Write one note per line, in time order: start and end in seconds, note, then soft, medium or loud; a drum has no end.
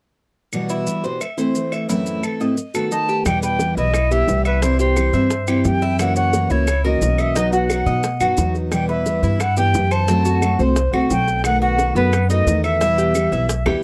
0.53 0.86 E2 soft
0.53 0.86 B2 medium
0.53 0.85 E3 medium
0.53 0.86 G3 medium
0.53 0.86 B3 medium
0.53 0.87 F#4 medium
0.53 claves medium
0.53 maracas medium
0.69 1.03 E4 medium
0.69 maracas medium
0.87 1.03 E3 soft
0.87 1.03 G3 soft
0.87 1.03 B3 soft
0.87 1.02 F#4 medium
0.87 maracas medium
1.04 1.21 B2 soft
1.04 1.20 E3 soft
1.04 1.21 G3 soft
1.04 1.20 B3 soft
1.04 1.20 F#4 soft
1.04 1.21 C5 medium
1.04 maracas soft
1.21 1.38 E5 medium
1.21 muted steel-string acoustic guitar stroke medium
1.21 claves medium
1.21 maracas medium
1.37 1.53 E3 soft
1.37 1.54 A3 medium
1.37 1.55 C4 medium
1.37 1.54 E4 medium
1.37 1.71 C5 medium
1.37 maracas medium
1.55 1.88 E3 soft
1.55 1.88 A3 soft
1.55 1.88 C4 soft
1.55 1.89 E4 soft
1.55 maracas medium
1.72 1.89 E5 medium
1.72 claves medium
1.72 maracas soft
1.88 2.23 F#2 medium
1.88 2.23 A2 medium
1.88 2.22 E3 medium
1.88 2.22 A3 medium
1.88 2.23 C4 medium
1.88 2.23 E4 medium
1.88 maracas medium
2.06 maracas medium
2.23 2.40 E3 soft
2.23 2.40 A3 soft
2.23 2.39 C4 soft
2.23 2.39 E4 soft
2.23 2.40 A4 medium
2.23 claves medium
2.23 maracas medium
2.40 2.57 A2 soft
2.40 2.57 E3 soft
2.40 2.56 A3 soft
2.40 2.57 C4 medium
2.40 2.57 E4 soft
2.40 2.74 D#5 medium
2.40 maracas soft
2.57 muted steel-string acoustic guitar stroke medium
2.57 maracas medium
2.74 2.90 D#3 soft
2.74 2.90 A3 medium
2.74 2.91 B3 soft
2.74 2.91 F#4 medium
2.74 2.91 A4 medium
2.74 claves medium
2.74 maracas medium
2.91 3.25 D#3 soft
2.91 3.25 A3 soft
2.91 3.25 B3 soft
2.91 3.09 D#4 medium
2.91 3.26 F#4 soft
2.91 3.24 A5 medium
2.91 maracas medium
3.09 3.26 G4 medium
3.09 maracas soft
3.25 3.73 E2 medium
3.25 3.59 B2 medium
3.25 3.59 E3 medium
3.25 3.59 G3 medium
3.25 3.60 B3 medium
3.25 3.60 E4 medium
3.25 3.42 G5 medium
3.25 high bongo medium
3.25 claves medium
3.25 maracas medium
3.43 3.76 B4 medium
3.43 3.75 G5 medium
3.43 high bongo soft
3.43 maracas medium
3.59 3.76 E3 soft
3.59 3.77 G3 medium
3.59 3.77 B3 soft
3.59 3.76 E4 soft
3.59 high bongo soft
3.59 maracas medium
3.77 4.25 B1 medium
3.77 3.93 E3 soft
3.77 3.93 G3 soft
3.77 3.93 B3 medium
3.77 3.94 E4 medium
3.77 4.11 E4 medium
3.77 4.13 D#5 medium
3.77 maracas soft
3.94 muted steel-string acoustic guitar stroke medium
3.94 high bongo medium
3.94 claves medium
3.94 maracas medium
4.11 4.26 E3 medium
4.11 4.27 G3 medium
4.11 4.28 B3 medium
4.11 4.28 E4 medium
4.11 4.45 G4 medium
4.11 4.45 E5 loud
4.11 high bongo soft
4.11 maracas soft
4.28 5.08 C2 medium
4.28 4.62 E3 soft
4.28 4.62 G3 soft
4.28 4.62 B3 soft
4.28 4.62 E4 soft
4.28 high bongo soft
4.28 low bongo medium
4.28 maracas medium
4.45 4.64 B4 medium
4.45 4.62 E5 medium
4.45 high bongo soft
4.45 claves medium
4.45 maracas soft
4.62 4.96 C3 medium
4.62 4.95 E3 medium
4.62 4.95 G3 medium
4.62 4.96 C4 medium
4.62 4.79 E4 medium
4.62 4.97 E4 medium
4.62 4.79 C5 medium
4.62 high bongo medium
4.62 maracas medium
4.79 5.13 G4 medium
4.79 5.67 C5 medium
4.79 high bongo soft
4.79 maracas medium
4.96 5.13 E3 soft
4.96 5.13 G3 soft
4.96 5.13 C4 soft
4.96 5.12 E4 medium
4.96 high bongo medium
4.96 claves medium
4.96 maracas medium
5.13 5.61 G2 medium
5.13 5.30 E3 soft
5.13 5.30 G3 soft
5.13 5.30 C4 medium
5.13 5.30 E4 soft
5.13 5.47 E5 medium
5.13 maracas soft
5.30 muted steel-string acoustic guitar stroke medium
5.30 high bongo medium
5.30 maracas medium
5.47 5.64 E3 medium
5.47 5.65 G3 medium
5.47 5.65 C4 medium
5.47 5.64 E4 medium
5.47 5.81 G4 medium
5.47 high bongo soft
5.47 claves medium
5.47 maracas medium
5.65 6.44 F#2 medium
5.65 5.98 E3 soft
5.65 5.99 C4 soft
5.65 5.99 E4 soft
5.65 6.00 G5 medium
5.65 high bongo soft
5.65 low bongo medium
5.65 maracas medium
5.82 6.15 E4 medium
5.82 high bongo soft
5.82 maracas soft
5.99 6.32 C#3 medium
5.99 6.32 E3 medium
5.99 6.33 A#3 medium
5.99 6.33 C#4 medium
5.99 6.33 F#4 medium
5.99 6.16 F#5 medium
5.99 high bongo medium
5.99 claves medium
5.99 maracas medium
6.16 6.49 C#5 medium
6.16 6.53 F#5 medium
6.16 high bongo soft
6.16 maracas medium
6.33 6.50 E3 soft
6.33 6.50 A#3 soft
6.33 6.49 C#4 medium
6.33 6.49 F#4 medium
6.33 high bongo medium
6.33 maracas medium
6.50 6.98 C#2 medium
6.50 6.67 E3 soft
6.50 6.67 A#3 soft
6.50 6.67 C#4 medium
6.50 6.83 E4 medium
6.50 6.67 F#4 medium
6.50 6.85 C#5 medium
6.50 maracas soft
6.67 muted steel-string acoustic guitar stroke medium
6.67 high bongo medium
6.67 claves medium
6.67 maracas medium
6.84 7.00 E3 medium
6.84 7.01 A#3 medium
6.84 7.01 C#4 medium
6.84 7.01 F#4 medium
6.84 7.18 A#4 medium
6.84 7.21 D#5 medium
6.84 high bongo soft
7.01 7.81 B1 medium
7.01 7.35 E3 soft
7.01 7.35 A#3 soft
7.01 7.35 C#4 soft
7.01 7.36 F#4 medium
7.01 high bongo soft
7.01 low bongo medium
7.01 maracas medium
7.18 7.35 D#5 medium
7.18 7.38 E5 medium
7.18 high bongo soft
7.18 claves medium
7.18 maracas soft
7.35 7.69 B2 medium
7.35 7.68 F#3 medium
7.35 7.69 B3 medium
7.35 7.52 D#4 medium
7.35 7.69 D#4 medium
7.35 7.70 F#4 medium
7.35 7.53 D#5 medium
7.35 high bongo medium
7.35 maracas medium
7.53 7.86 F#4 medium
7.53 8.25 F#5 medium
7.53 high bongo soft
7.53 maracas medium
7.69 7.86 F#3 soft
7.69 7.86 B3 soft
7.69 7.86 D#4 soft
7.69 7.85 F#4 medium
7.69 high bongo soft
7.69 claves medium
7.69 maracas medium
7.86 8.18 B2 medium
7.86 8.02 F#3 soft
7.86 8.02 B3 soft
7.86 8.03 D#4 soft
7.86 8.03 F#4 medium
7.86 8.20 D#5 medium
7.86 maracas soft
8.03 muted steel-string acoustic guitar stroke medium
8.03 high bongo medium
8.03 maracas medium
8.20 8.36 F#2 medium
8.20 8.36 F#3 soft
8.20 8.37 B3 medium
8.20 8.37 D#4 medium
8.20 8.37 F#4 medium
8.20 8.54 F#4 medium
8.20 high bongo soft
8.20 claves medium
8.20 maracas medium
8.37 9.17 E2 medium
8.37 8.71 F#3 soft
8.37 8.72 B3 soft
8.37 8.72 D#4 soft
8.37 8.72 F#4 soft
8.37 high bongo soft
8.37 low bongo medium
8.37 maracas medium
8.55 high bongo soft
8.55 maracas soft
8.72 9.05 B2 medium
8.72 9.05 E3 medium
8.72 9.06 G3 medium
8.72 9.06 B3 medium
8.72 9.06 E4 medium
8.72 8.88 G5 medium
8.72 high bongo medium
8.72 claves medium
8.72 maracas medium
8.89 9.22 B4 medium
8.89 9.43 E5 medium
8.89 high bongo soft
9.06 9.23 E3 soft
9.06 9.23 G3 soft
9.06 9.22 B3 soft
9.06 9.21 E4 medium
9.06 high bongo soft
9.06 maracas medium
9.23 9.70 G2 medium
9.23 9.39 E3 soft
9.23 9.39 G3 soft
9.23 9.39 B3 soft
9.23 9.39 E4 medium
9.23 9.56 E4 medium
9.23 maracas soft
9.40 9.58 F#5 medium
9.40 muted steel-string acoustic guitar stroke soft
9.40 high bongo medium
9.40 claves medium
9.40 maracas medium
9.57 9.73 E3 medium
9.57 9.74 G3 medium
9.57 9.74 B3 medium
9.57 9.73 E4 medium
9.57 9.90 G4 medium
9.57 9.94 G5 loud
9.57 high bongo soft
9.57 maracas medium
9.74 10.54 F#2 medium
9.74 10.07 E3 soft
9.74 10.08 B3 soft
9.74 10.08 E4 medium
9.74 high bongo soft
9.74 low bongo medium
9.74 maracas medium
9.91 10.08 C5 medium
9.91 10.60 A5 loud
9.91 high bongo soft
9.91 claves medium
9.91 maracas soft
10.08 10.40 F#3 medium
10.08 10.41 A3 medium
10.08 10.25 C4 medium
10.08 10.41 C4 medium
10.08 10.42 F#4 medium
10.08 high bongo medium
10.08 maracas medium
10.25 10.58 F#4 medium
10.25 high bongo soft
10.25 maracas medium
10.42 10.58 F#3 soft
10.42 10.59 A3 soft
10.42 10.59 C4 soft
10.42 10.58 F#4 medium
10.42 high bongo soft
10.42 claves medium
10.42 maracas medium
10.59 10.91 C2 medium
10.59 10.75 A3 soft
10.59 10.76 C4 medium
10.59 10.76 F#4 medium
10.59 10.93 C5 medium
10.59 maracas soft
10.76 muted steel-string acoustic guitar stroke medium
10.76 high bongo medium
10.76 maracas medium
10.93 11.09 C2 medium
10.93 11.10 A3 medium
10.93 11.10 C4 medium
10.93 11.10 F#4 medium
10.93 11.27 F#4 medium
10.93 high bongo soft
10.93 claves medium
11.10 11.90 B1 medium
11.10 11.44 F#3 soft
11.10 11.44 A3 medium
11.10 11.45 C4 medium
11.10 11.43 G5 loud
11.10 high bongo soft
11.10 low bongo medium
11.10 maracas medium
11.28 high bongo soft
11.28 maracas soft
11.44 11.78 B2 medium
11.44 11.77 D#3 medium
11.44 11.78 A3 medium
11.44 11.79 B3 medium
11.44 11.79 F#4 medium
11.44 11.61 F#5 loud
11.44 high bongo medium
11.44 claves medium
11.44 maracas medium
11.62 11.95 F#4 medium
11.62 11.94 F#5 loud
11.62 high bongo soft
11.79 11.95 D#3 soft
11.79 11.95 B3 medium
11.79 11.94 F#4 medium
11.79 high bongo medium
11.79 maracas medium
11.95 12.43 F#2 loud
11.95 12.12 D#3 soft
11.95 12.12 A3 soft
11.95 12.29 B3 medium
11.95 12.12 B3 soft
11.95 12.12 F#4 medium
11.95 12.28 B4 medium
11.95 maracas soft
12.13 muted steel-string acoustic guitar stroke medium
12.13 high bongo medium
12.13 claves medium
12.13 maracas medium
12.30 12.46 D#3 soft
12.30 12.46 A3 medium
12.30 12.47 B3 medium
12.30 12.63 D#4 medium
12.30 12.46 F#4 medium
12.30 12.62 D#5 medium
12.30 high bongo soft
12.30 maracas medium
12.46 13.26 E2 medium
12.46 12.80 D#3 soft
12.46 12.81 A3 medium
12.46 12.80 B3 medium
12.46 12.81 F#4 soft
12.46 high bongo soft
12.46 low bongo medium
12.46 maracas medium
12.64 12.80 E5 medium
12.64 13.79 E5 medium
12.64 high bongo soft
12.64 claves medium
12.64 maracas soft
12.80 13.14 B2 medium
12.80 13.14 E3 medium
12.80 13.14 G3 medium
12.80 13.15 B3 medium
12.80 12.98 E4 medium
12.80 13.15 E4 medium
12.80 high bongo medium
12.80 maracas medium
12.98 13.31 G4 medium
12.98 high bongo soft
12.98 maracas medium
13.15 13.31 E3 soft
13.15 13.32 G3 soft
13.15 13.31 B3 soft
13.15 13.30 E4 soft
13.15 high bongo soft
13.15 claves medium
13.15 maracas medium
13.32 13.64 B1 medium
13.32 13.48 E3 soft
13.32 13.48 G3 medium
13.32 13.49 B3 soft
13.32 13.48 E4 medium
13.32 13.65 E5 medium
13.32 maracas soft
13.49 muted steel-string acoustic guitar stroke medium
13.49 high bongo medium
13.49 maracas medium
13.66 13.82 D#2 medium
13.66 13.81 E3 medium
13.66 13.82 G3 medium
13.66 13.82 B3 medium
13.66 13.82 E4 medium
13.66 13.83 G4 medium
13.66 high bongo medium
13.66 claves medium